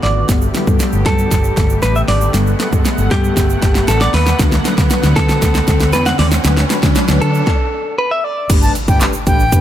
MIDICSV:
0, 0, Header, 1, 9, 480
1, 0, Start_track
1, 0, Key_signature, 1, "major"
1, 0, Tempo, 512821
1, 272, Time_signature, 4, 2, 24, 8
1, 8994, End_track
2, 0, Start_track
2, 0, Title_t, "Flute"
2, 0, Program_c, 0, 73
2, 8070, Note_on_c, 0, 81, 84
2, 8166, Note_off_c, 0, 81, 0
2, 8313, Note_on_c, 0, 79, 76
2, 8408, Note_off_c, 0, 79, 0
2, 8676, Note_on_c, 0, 79, 89
2, 8994, Note_off_c, 0, 79, 0
2, 8994, End_track
3, 0, Start_track
3, 0, Title_t, "Clean electric guitar"
3, 0, Program_c, 1, 27
3, 29, Note_on_c, 1, 74, 86
3, 254, Note_off_c, 1, 74, 0
3, 995, Note_on_c, 1, 69, 84
3, 1704, Note_off_c, 1, 69, 0
3, 1708, Note_on_c, 1, 71, 98
3, 1834, Note_off_c, 1, 71, 0
3, 1834, Note_on_c, 1, 76, 102
3, 1881, Note_off_c, 1, 76, 0
3, 1950, Note_on_c, 1, 74, 91
3, 2175, Note_off_c, 1, 74, 0
3, 2914, Note_on_c, 1, 67, 84
3, 3633, Note_on_c, 1, 69, 95
3, 3655, Note_off_c, 1, 67, 0
3, 3756, Note_off_c, 1, 69, 0
3, 3758, Note_on_c, 1, 74, 104
3, 3867, Note_off_c, 1, 74, 0
3, 3876, Note_on_c, 1, 71, 86
3, 4098, Note_off_c, 1, 71, 0
3, 4831, Note_on_c, 1, 69, 90
3, 5548, Note_off_c, 1, 69, 0
3, 5552, Note_on_c, 1, 71, 99
3, 5674, Note_on_c, 1, 78, 105
3, 5676, Note_off_c, 1, 71, 0
3, 5790, Note_off_c, 1, 78, 0
3, 5794, Note_on_c, 1, 74, 89
3, 5859, Note_off_c, 1, 74, 0
3, 6753, Note_on_c, 1, 69, 86
3, 7470, Note_off_c, 1, 69, 0
3, 7474, Note_on_c, 1, 71, 97
3, 7585, Note_off_c, 1, 71, 0
3, 7594, Note_on_c, 1, 76, 106
3, 7714, Note_off_c, 1, 76, 0
3, 7714, Note_on_c, 1, 74, 89
3, 7953, Note_off_c, 1, 74, 0
3, 8994, End_track
4, 0, Start_track
4, 0, Title_t, "Analog polysynth"
4, 0, Program_c, 2, 90
4, 267, Note_on_c, 2, 55, 78
4, 270, Note_on_c, 2, 59, 71
4, 273, Note_on_c, 2, 69, 83
4, 426, Note_off_c, 2, 55, 0
4, 428, Note_off_c, 2, 59, 0
4, 429, Note_off_c, 2, 69, 0
4, 507, Note_on_c, 2, 55, 88
4, 508, Note_on_c, 2, 59, 82
4, 511, Note_on_c, 2, 64, 98
4, 588, Note_off_c, 2, 55, 0
4, 588, Note_off_c, 2, 59, 0
4, 590, Note_off_c, 2, 64, 0
4, 626, Note_on_c, 2, 55, 90
4, 629, Note_on_c, 2, 59, 80
4, 630, Note_on_c, 2, 69, 99
4, 1256, Note_off_c, 2, 55, 0
4, 1257, Note_off_c, 2, 59, 0
4, 1258, Note_off_c, 2, 69, 0
4, 2189, Note_on_c, 2, 55, 73
4, 2191, Note_on_c, 2, 59, 69
4, 2192, Note_on_c, 2, 69, 83
4, 2347, Note_off_c, 2, 55, 0
4, 2348, Note_off_c, 2, 59, 0
4, 2349, Note_off_c, 2, 69, 0
4, 2428, Note_on_c, 2, 55, 88
4, 2430, Note_on_c, 2, 59, 80
4, 2432, Note_on_c, 2, 69, 96
4, 2509, Note_off_c, 2, 55, 0
4, 2510, Note_off_c, 2, 59, 0
4, 2511, Note_off_c, 2, 69, 0
4, 2548, Note_on_c, 2, 55, 87
4, 2551, Note_on_c, 2, 59, 86
4, 2553, Note_on_c, 2, 69, 101
4, 3177, Note_off_c, 2, 55, 0
4, 3178, Note_off_c, 2, 59, 0
4, 3179, Note_off_c, 2, 69, 0
4, 4111, Note_on_c, 2, 54, 79
4, 4115, Note_on_c, 2, 62, 70
4, 4116, Note_on_c, 2, 71, 86
4, 4269, Note_off_c, 2, 54, 0
4, 4270, Note_off_c, 2, 62, 0
4, 4271, Note_off_c, 2, 71, 0
4, 4349, Note_on_c, 2, 54, 86
4, 4352, Note_on_c, 2, 62, 80
4, 4353, Note_on_c, 2, 71, 95
4, 4429, Note_off_c, 2, 54, 0
4, 4430, Note_off_c, 2, 62, 0
4, 4431, Note_off_c, 2, 71, 0
4, 4467, Note_on_c, 2, 54, 88
4, 4470, Note_on_c, 2, 62, 84
4, 4472, Note_on_c, 2, 71, 102
4, 5096, Note_off_c, 2, 54, 0
4, 5098, Note_off_c, 2, 62, 0
4, 5099, Note_off_c, 2, 71, 0
4, 6029, Note_on_c, 2, 54, 79
4, 6031, Note_on_c, 2, 62, 71
4, 6034, Note_on_c, 2, 71, 84
4, 6188, Note_off_c, 2, 54, 0
4, 6188, Note_off_c, 2, 62, 0
4, 6190, Note_off_c, 2, 71, 0
4, 6268, Note_on_c, 2, 54, 88
4, 6271, Note_on_c, 2, 62, 81
4, 6272, Note_on_c, 2, 71, 98
4, 6348, Note_off_c, 2, 54, 0
4, 6350, Note_off_c, 2, 62, 0
4, 6351, Note_off_c, 2, 71, 0
4, 6390, Note_on_c, 2, 54, 92
4, 6394, Note_on_c, 2, 62, 86
4, 6395, Note_on_c, 2, 71, 99
4, 6992, Note_off_c, 2, 54, 0
4, 6993, Note_off_c, 2, 62, 0
4, 6994, Note_off_c, 2, 71, 0
4, 7951, Note_on_c, 2, 57, 78
4, 7954, Note_on_c, 2, 62, 72
4, 7955, Note_on_c, 2, 67, 71
4, 7956, Note_on_c, 2, 71, 86
4, 8187, Note_off_c, 2, 57, 0
4, 8188, Note_off_c, 2, 62, 0
4, 8188, Note_off_c, 2, 67, 0
4, 8189, Note_off_c, 2, 71, 0
4, 8311, Note_on_c, 2, 57, 76
4, 8313, Note_on_c, 2, 62, 73
4, 8314, Note_on_c, 2, 67, 68
4, 8315, Note_on_c, 2, 71, 84
4, 8547, Note_off_c, 2, 57, 0
4, 8548, Note_off_c, 2, 62, 0
4, 8548, Note_off_c, 2, 67, 0
4, 8549, Note_off_c, 2, 71, 0
4, 8671, Note_on_c, 2, 57, 84
4, 8672, Note_on_c, 2, 62, 73
4, 8674, Note_on_c, 2, 67, 76
4, 8677, Note_on_c, 2, 71, 92
4, 8828, Note_off_c, 2, 57, 0
4, 8829, Note_off_c, 2, 62, 0
4, 8830, Note_off_c, 2, 67, 0
4, 8831, Note_off_c, 2, 71, 0
4, 8910, Note_on_c, 2, 57, 76
4, 8912, Note_on_c, 2, 62, 77
4, 8913, Note_on_c, 2, 67, 74
4, 8914, Note_on_c, 2, 71, 92
4, 8994, Note_off_c, 2, 57, 0
4, 8994, Note_off_c, 2, 62, 0
4, 8994, Note_off_c, 2, 67, 0
4, 8994, Note_off_c, 2, 71, 0
4, 8994, End_track
5, 0, Start_track
5, 0, Title_t, "Analog synth pad"
5, 0, Program_c, 3, 89
5, 0, Note_on_c, 3, 50, 78
5, 0, Note_on_c, 3, 57, 73
5, 0, Note_on_c, 3, 59, 71
5, 0, Note_on_c, 3, 66, 90
5, 234, Note_off_c, 3, 57, 0
5, 235, Note_off_c, 3, 66, 0
5, 236, Note_off_c, 3, 59, 0
5, 273, Note_on_c, 3, 57, 73
5, 273, Note_on_c, 3, 59, 73
5, 273, Note_on_c, 3, 67, 86
5, 2174, Note_off_c, 3, 67, 0
5, 2189, Note_on_c, 3, 78, 85
5, 4076, Note_off_c, 3, 50, 0
5, 4118, Note_on_c, 3, 50, 81
5, 6954, Note_off_c, 3, 78, 0
5, 6955, Note_off_c, 3, 57, 0
5, 6956, Note_off_c, 3, 59, 0
5, 6967, Note_off_c, 3, 50, 0
5, 8994, End_track
6, 0, Start_track
6, 0, Title_t, "Fingered electric bass"
6, 0, Program_c, 4, 33
6, 31, Note_on_c, 4, 32, 85
6, 208, Note_off_c, 4, 32, 0
6, 270, Note_on_c, 4, 31, 102
6, 447, Note_off_c, 4, 31, 0
6, 630, Note_on_c, 4, 43, 96
6, 719, Note_off_c, 4, 43, 0
6, 871, Note_on_c, 4, 31, 97
6, 960, Note_off_c, 4, 31, 0
6, 992, Note_on_c, 4, 43, 103
6, 1168, Note_off_c, 4, 43, 0
6, 1232, Note_on_c, 4, 31, 93
6, 1408, Note_off_c, 4, 31, 0
6, 1471, Note_on_c, 4, 31, 100
6, 1647, Note_off_c, 4, 31, 0
6, 1711, Note_on_c, 4, 33, 90
6, 1887, Note_off_c, 4, 33, 0
6, 1951, Note_on_c, 4, 32, 90
6, 2127, Note_off_c, 4, 32, 0
6, 2192, Note_on_c, 4, 31, 103
6, 2368, Note_off_c, 4, 31, 0
6, 2552, Note_on_c, 4, 43, 99
6, 2640, Note_off_c, 4, 43, 0
6, 2792, Note_on_c, 4, 31, 108
6, 2880, Note_off_c, 4, 31, 0
6, 2914, Note_on_c, 4, 43, 90
6, 3089, Note_off_c, 4, 43, 0
6, 3154, Note_on_c, 4, 31, 96
6, 3329, Note_off_c, 4, 31, 0
6, 3394, Note_on_c, 4, 31, 91
6, 3569, Note_off_c, 4, 31, 0
6, 3635, Note_on_c, 4, 33, 94
6, 3810, Note_off_c, 4, 33, 0
6, 3872, Note_on_c, 4, 39, 92
6, 4048, Note_off_c, 4, 39, 0
6, 4114, Note_on_c, 4, 38, 107
6, 4289, Note_off_c, 4, 38, 0
6, 4474, Note_on_c, 4, 50, 104
6, 4561, Note_off_c, 4, 50, 0
6, 4714, Note_on_c, 4, 38, 97
6, 4801, Note_off_c, 4, 38, 0
6, 5075, Note_on_c, 4, 38, 109
6, 5250, Note_off_c, 4, 38, 0
6, 5314, Note_on_c, 4, 38, 99
6, 5553, Note_off_c, 4, 38, 0
6, 5553, Note_on_c, 4, 40, 99
6, 5729, Note_off_c, 4, 40, 0
6, 5793, Note_on_c, 4, 39, 91
6, 5969, Note_off_c, 4, 39, 0
6, 6033, Note_on_c, 4, 38, 115
6, 6209, Note_off_c, 4, 38, 0
6, 6392, Note_on_c, 4, 50, 95
6, 6480, Note_off_c, 4, 50, 0
6, 6633, Note_on_c, 4, 38, 105
6, 6721, Note_off_c, 4, 38, 0
6, 6753, Note_on_c, 4, 50, 102
6, 6929, Note_off_c, 4, 50, 0
6, 7953, Note_on_c, 4, 31, 106
6, 8129, Note_off_c, 4, 31, 0
6, 8314, Note_on_c, 4, 31, 106
6, 8401, Note_off_c, 4, 31, 0
6, 8674, Note_on_c, 4, 33, 94
6, 8914, Note_on_c, 4, 31, 102
6, 8928, Note_off_c, 4, 33, 0
6, 8994, Note_off_c, 4, 31, 0
6, 8994, End_track
7, 0, Start_track
7, 0, Title_t, "Impact"
7, 0, Program_c, 5, 103
7, 7953, Note_on_c, 5, 60, 88
7, 8994, Note_off_c, 5, 60, 0
7, 8994, End_track
8, 0, Start_track
8, 0, Title_t, "Riser"
8, 0, Program_c, 6, 103
8, 0, Note_on_c, 6, 60, 78
8, 6993, Note_off_c, 6, 60, 0
8, 8994, End_track
9, 0, Start_track
9, 0, Title_t, "Drums"
9, 30, Note_on_c, 9, 38, 82
9, 124, Note_off_c, 9, 38, 0
9, 269, Note_on_c, 9, 38, 83
9, 269, Note_on_c, 9, 42, 106
9, 270, Note_on_c, 9, 36, 116
9, 270, Note_on_c, 9, 82, 67
9, 363, Note_off_c, 9, 38, 0
9, 363, Note_off_c, 9, 42, 0
9, 364, Note_off_c, 9, 36, 0
9, 364, Note_off_c, 9, 82, 0
9, 389, Note_on_c, 9, 82, 47
9, 483, Note_off_c, 9, 82, 0
9, 510, Note_on_c, 9, 38, 88
9, 510, Note_on_c, 9, 42, 75
9, 511, Note_on_c, 9, 82, 47
9, 604, Note_off_c, 9, 38, 0
9, 604, Note_off_c, 9, 42, 0
9, 604, Note_off_c, 9, 82, 0
9, 630, Note_on_c, 9, 36, 100
9, 630, Note_on_c, 9, 82, 44
9, 723, Note_off_c, 9, 82, 0
9, 724, Note_off_c, 9, 36, 0
9, 744, Note_on_c, 9, 82, 65
9, 749, Note_on_c, 9, 38, 87
9, 749, Note_on_c, 9, 42, 89
9, 838, Note_off_c, 9, 82, 0
9, 842, Note_off_c, 9, 42, 0
9, 843, Note_off_c, 9, 38, 0
9, 865, Note_on_c, 9, 82, 51
9, 959, Note_off_c, 9, 82, 0
9, 989, Note_on_c, 9, 38, 91
9, 990, Note_on_c, 9, 42, 76
9, 992, Note_on_c, 9, 36, 94
9, 1083, Note_off_c, 9, 38, 0
9, 1084, Note_off_c, 9, 42, 0
9, 1085, Note_off_c, 9, 36, 0
9, 1110, Note_on_c, 9, 82, 51
9, 1203, Note_off_c, 9, 82, 0
9, 1229, Note_on_c, 9, 38, 90
9, 1229, Note_on_c, 9, 82, 85
9, 1232, Note_on_c, 9, 36, 93
9, 1232, Note_on_c, 9, 42, 78
9, 1323, Note_off_c, 9, 38, 0
9, 1323, Note_off_c, 9, 82, 0
9, 1325, Note_off_c, 9, 36, 0
9, 1325, Note_off_c, 9, 42, 0
9, 1347, Note_on_c, 9, 82, 52
9, 1441, Note_off_c, 9, 82, 0
9, 1468, Note_on_c, 9, 82, 51
9, 1470, Note_on_c, 9, 38, 92
9, 1470, Note_on_c, 9, 42, 80
9, 1472, Note_on_c, 9, 36, 98
9, 1561, Note_off_c, 9, 82, 0
9, 1563, Note_off_c, 9, 38, 0
9, 1564, Note_off_c, 9, 42, 0
9, 1565, Note_off_c, 9, 36, 0
9, 1587, Note_on_c, 9, 82, 45
9, 1680, Note_off_c, 9, 82, 0
9, 1705, Note_on_c, 9, 82, 72
9, 1710, Note_on_c, 9, 38, 91
9, 1710, Note_on_c, 9, 42, 87
9, 1799, Note_off_c, 9, 82, 0
9, 1804, Note_off_c, 9, 38, 0
9, 1804, Note_off_c, 9, 42, 0
9, 1831, Note_on_c, 9, 82, 45
9, 1924, Note_off_c, 9, 82, 0
9, 1950, Note_on_c, 9, 38, 92
9, 1952, Note_on_c, 9, 46, 66
9, 2043, Note_off_c, 9, 38, 0
9, 2046, Note_off_c, 9, 46, 0
9, 2069, Note_on_c, 9, 82, 61
9, 2163, Note_off_c, 9, 82, 0
9, 2190, Note_on_c, 9, 38, 96
9, 2190, Note_on_c, 9, 42, 101
9, 2191, Note_on_c, 9, 82, 67
9, 2284, Note_off_c, 9, 38, 0
9, 2284, Note_off_c, 9, 42, 0
9, 2284, Note_off_c, 9, 82, 0
9, 2311, Note_on_c, 9, 82, 46
9, 2405, Note_off_c, 9, 82, 0
9, 2431, Note_on_c, 9, 38, 102
9, 2431, Note_on_c, 9, 42, 74
9, 2432, Note_on_c, 9, 82, 47
9, 2525, Note_off_c, 9, 38, 0
9, 2525, Note_off_c, 9, 42, 0
9, 2526, Note_off_c, 9, 82, 0
9, 2552, Note_on_c, 9, 36, 100
9, 2552, Note_on_c, 9, 82, 46
9, 2645, Note_off_c, 9, 36, 0
9, 2645, Note_off_c, 9, 82, 0
9, 2667, Note_on_c, 9, 82, 63
9, 2672, Note_on_c, 9, 38, 93
9, 2672, Note_on_c, 9, 42, 87
9, 2761, Note_off_c, 9, 82, 0
9, 2765, Note_off_c, 9, 42, 0
9, 2766, Note_off_c, 9, 38, 0
9, 2787, Note_on_c, 9, 82, 54
9, 2881, Note_off_c, 9, 82, 0
9, 2911, Note_on_c, 9, 38, 99
9, 2912, Note_on_c, 9, 42, 73
9, 2914, Note_on_c, 9, 36, 91
9, 3005, Note_off_c, 9, 38, 0
9, 3006, Note_off_c, 9, 42, 0
9, 3007, Note_off_c, 9, 36, 0
9, 3034, Note_on_c, 9, 82, 52
9, 3127, Note_off_c, 9, 82, 0
9, 3151, Note_on_c, 9, 38, 99
9, 3153, Note_on_c, 9, 82, 88
9, 3154, Note_on_c, 9, 36, 93
9, 3154, Note_on_c, 9, 42, 72
9, 3245, Note_off_c, 9, 38, 0
9, 3247, Note_off_c, 9, 36, 0
9, 3247, Note_off_c, 9, 42, 0
9, 3247, Note_off_c, 9, 82, 0
9, 3274, Note_on_c, 9, 82, 53
9, 3368, Note_off_c, 9, 82, 0
9, 3391, Note_on_c, 9, 38, 101
9, 3392, Note_on_c, 9, 42, 80
9, 3394, Note_on_c, 9, 36, 99
9, 3394, Note_on_c, 9, 82, 48
9, 3485, Note_off_c, 9, 38, 0
9, 3485, Note_off_c, 9, 42, 0
9, 3487, Note_off_c, 9, 36, 0
9, 3488, Note_off_c, 9, 82, 0
9, 3511, Note_on_c, 9, 38, 99
9, 3513, Note_on_c, 9, 82, 47
9, 3605, Note_off_c, 9, 38, 0
9, 3607, Note_off_c, 9, 82, 0
9, 3630, Note_on_c, 9, 82, 70
9, 3632, Note_on_c, 9, 38, 99
9, 3632, Note_on_c, 9, 42, 88
9, 3724, Note_off_c, 9, 82, 0
9, 3726, Note_off_c, 9, 38, 0
9, 3726, Note_off_c, 9, 42, 0
9, 3752, Note_on_c, 9, 38, 108
9, 3756, Note_on_c, 9, 82, 46
9, 3845, Note_off_c, 9, 38, 0
9, 3849, Note_off_c, 9, 82, 0
9, 3873, Note_on_c, 9, 38, 102
9, 3876, Note_on_c, 9, 46, 67
9, 3967, Note_off_c, 9, 38, 0
9, 3969, Note_off_c, 9, 46, 0
9, 3992, Note_on_c, 9, 38, 104
9, 3992, Note_on_c, 9, 82, 60
9, 4086, Note_off_c, 9, 38, 0
9, 4086, Note_off_c, 9, 82, 0
9, 4111, Note_on_c, 9, 82, 66
9, 4112, Note_on_c, 9, 42, 103
9, 4113, Note_on_c, 9, 36, 123
9, 4113, Note_on_c, 9, 38, 104
9, 4205, Note_off_c, 9, 82, 0
9, 4206, Note_off_c, 9, 38, 0
9, 4206, Note_off_c, 9, 42, 0
9, 4207, Note_off_c, 9, 36, 0
9, 4231, Note_on_c, 9, 82, 46
9, 4233, Note_on_c, 9, 38, 108
9, 4325, Note_off_c, 9, 82, 0
9, 4326, Note_off_c, 9, 38, 0
9, 4352, Note_on_c, 9, 82, 49
9, 4353, Note_on_c, 9, 38, 110
9, 4353, Note_on_c, 9, 42, 78
9, 4446, Note_off_c, 9, 82, 0
9, 4447, Note_off_c, 9, 38, 0
9, 4447, Note_off_c, 9, 42, 0
9, 4472, Note_on_c, 9, 38, 104
9, 4472, Note_on_c, 9, 82, 44
9, 4473, Note_on_c, 9, 36, 107
9, 4565, Note_off_c, 9, 82, 0
9, 4566, Note_off_c, 9, 38, 0
9, 4567, Note_off_c, 9, 36, 0
9, 4588, Note_on_c, 9, 82, 65
9, 4592, Note_on_c, 9, 42, 91
9, 4593, Note_on_c, 9, 38, 105
9, 4681, Note_off_c, 9, 82, 0
9, 4686, Note_off_c, 9, 38, 0
9, 4686, Note_off_c, 9, 42, 0
9, 4708, Note_on_c, 9, 82, 57
9, 4713, Note_on_c, 9, 38, 106
9, 4802, Note_off_c, 9, 82, 0
9, 4806, Note_off_c, 9, 38, 0
9, 4833, Note_on_c, 9, 38, 107
9, 4834, Note_on_c, 9, 42, 71
9, 4835, Note_on_c, 9, 36, 98
9, 4926, Note_off_c, 9, 38, 0
9, 4928, Note_off_c, 9, 42, 0
9, 4929, Note_off_c, 9, 36, 0
9, 4954, Note_on_c, 9, 38, 100
9, 4955, Note_on_c, 9, 82, 51
9, 5047, Note_off_c, 9, 38, 0
9, 5048, Note_off_c, 9, 82, 0
9, 5073, Note_on_c, 9, 38, 107
9, 5074, Note_on_c, 9, 82, 88
9, 5075, Note_on_c, 9, 36, 96
9, 5076, Note_on_c, 9, 42, 73
9, 5167, Note_off_c, 9, 38, 0
9, 5168, Note_off_c, 9, 82, 0
9, 5169, Note_off_c, 9, 36, 0
9, 5169, Note_off_c, 9, 42, 0
9, 5192, Note_on_c, 9, 82, 52
9, 5193, Note_on_c, 9, 38, 111
9, 5285, Note_off_c, 9, 82, 0
9, 5287, Note_off_c, 9, 38, 0
9, 5310, Note_on_c, 9, 82, 50
9, 5314, Note_on_c, 9, 38, 109
9, 5314, Note_on_c, 9, 42, 80
9, 5315, Note_on_c, 9, 36, 97
9, 5404, Note_off_c, 9, 82, 0
9, 5407, Note_off_c, 9, 38, 0
9, 5408, Note_off_c, 9, 36, 0
9, 5408, Note_off_c, 9, 42, 0
9, 5429, Note_on_c, 9, 82, 46
9, 5433, Note_on_c, 9, 38, 114
9, 5523, Note_off_c, 9, 82, 0
9, 5526, Note_off_c, 9, 38, 0
9, 5548, Note_on_c, 9, 82, 71
9, 5553, Note_on_c, 9, 38, 107
9, 5553, Note_on_c, 9, 42, 88
9, 5642, Note_off_c, 9, 82, 0
9, 5647, Note_off_c, 9, 38, 0
9, 5647, Note_off_c, 9, 42, 0
9, 5672, Note_on_c, 9, 82, 48
9, 5674, Note_on_c, 9, 38, 118
9, 5765, Note_off_c, 9, 82, 0
9, 5767, Note_off_c, 9, 38, 0
9, 5793, Note_on_c, 9, 38, 111
9, 5795, Note_on_c, 9, 46, 69
9, 5886, Note_off_c, 9, 38, 0
9, 5889, Note_off_c, 9, 46, 0
9, 5911, Note_on_c, 9, 82, 63
9, 5912, Note_on_c, 9, 38, 111
9, 6004, Note_off_c, 9, 82, 0
9, 6005, Note_off_c, 9, 38, 0
9, 6031, Note_on_c, 9, 82, 67
9, 6033, Note_on_c, 9, 38, 113
9, 6033, Note_on_c, 9, 42, 108
9, 6125, Note_off_c, 9, 82, 0
9, 6126, Note_off_c, 9, 38, 0
9, 6126, Note_off_c, 9, 42, 0
9, 6152, Note_on_c, 9, 38, 114
9, 6152, Note_on_c, 9, 82, 47
9, 6245, Note_off_c, 9, 38, 0
9, 6245, Note_off_c, 9, 82, 0
9, 6272, Note_on_c, 9, 38, 116
9, 6272, Note_on_c, 9, 42, 81
9, 6273, Note_on_c, 9, 82, 52
9, 6365, Note_off_c, 9, 38, 0
9, 6365, Note_off_c, 9, 42, 0
9, 6367, Note_off_c, 9, 82, 0
9, 6390, Note_on_c, 9, 82, 46
9, 6392, Note_on_c, 9, 38, 114
9, 6393, Note_on_c, 9, 36, 106
9, 6484, Note_off_c, 9, 82, 0
9, 6486, Note_off_c, 9, 36, 0
9, 6486, Note_off_c, 9, 38, 0
9, 6506, Note_on_c, 9, 82, 67
9, 6512, Note_on_c, 9, 38, 118
9, 6512, Note_on_c, 9, 42, 91
9, 6600, Note_off_c, 9, 82, 0
9, 6606, Note_off_c, 9, 38, 0
9, 6606, Note_off_c, 9, 42, 0
9, 6627, Note_on_c, 9, 82, 56
9, 6632, Note_on_c, 9, 38, 108
9, 6721, Note_off_c, 9, 82, 0
9, 6726, Note_off_c, 9, 38, 0
9, 6754, Note_on_c, 9, 42, 76
9, 6848, Note_off_c, 9, 42, 0
9, 6874, Note_on_c, 9, 82, 50
9, 6968, Note_off_c, 9, 82, 0
9, 6991, Note_on_c, 9, 38, 92
9, 6992, Note_on_c, 9, 36, 112
9, 7085, Note_off_c, 9, 38, 0
9, 7086, Note_off_c, 9, 36, 0
9, 7952, Note_on_c, 9, 42, 111
9, 7953, Note_on_c, 9, 36, 124
9, 7953, Note_on_c, 9, 49, 107
9, 7953, Note_on_c, 9, 82, 68
9, 8046, Note_off_c, 9, 42, 0
9, 8046, Note_off_c, 9, 49, 0
9, 8047, Note_off_c, 9, 36, 0
9, 8047, Note_off_c, 9, 82, 0
9, 8073, Note_on_c, 9, 82, 48
9, 8167, Note_off_c, 9, 82, 0
9, 8193, Note_on_c, 9, 42, 80
9, 8194, Note_on_c, 9, 82, 52
9, 8286, Note_off_c, 9, 42, 0
9, 8287, Note_off_c, 9, 82, 0
9, 8313, Note_on_c, 9, 36, 110
9, 8313, Note_on_c, 9, 42, 60
9, 8313, Note_on_c, 9, 82, 44
9, 8406, Note_off_c, 9, 82, 0
9, 8407, Note_off_c, 9, 36, 0
9, 8407, Note_off_c, 9, 42, 0
9, 8427, Note_on_c, 9, 82, 63
9, 8432, Note_on_c, 9, 42, 93
9, 8434, Note_on_c, 9, 39, 105
9, 8443, Note_on_c, 9, 38, 83
9, 8521, Note_off_c, 9, 82, 0
9, 8526, Note_off_c, 9, 42, 0
9, 8528, Note_off_c, 9, 39, 0
9, 8536, Note_off_c, 9, 38, 0
9, 8547, Note_on_c, 9, 82, 58
9, 8641, Note_off_c, 9, 82, 0
9, 8671, Note_on_c, 9, 82, 49
9, 8674, Note_on_c, 9, 42, 79
9, 8675, Note_on_c, 9, 36, 98
9, 8765, Note_off_c, 9, 82, 0
9, 8768, Note_off_c, 9, 36, 0
9, 8768, Note_off_c, 9, 42, 0
9, 8793, Note_on_c, 9, 82, 52
9, 8887, Note_off_c, 9, 82, 0
9, 8912, Note_on_c, 9, 82, 94
9, 8914, Note_on_c, 9, 36, 95
9, 8915, Note_on_c, 9, 42, 78
9, 8994, Note_off_c, 9, 36, 0
9, 8994, Note_off_c, 9, 42, 0
9, 8994, Note_off_c, 9, 82, 0
9, 8994, End_track
0, 0, End_of_file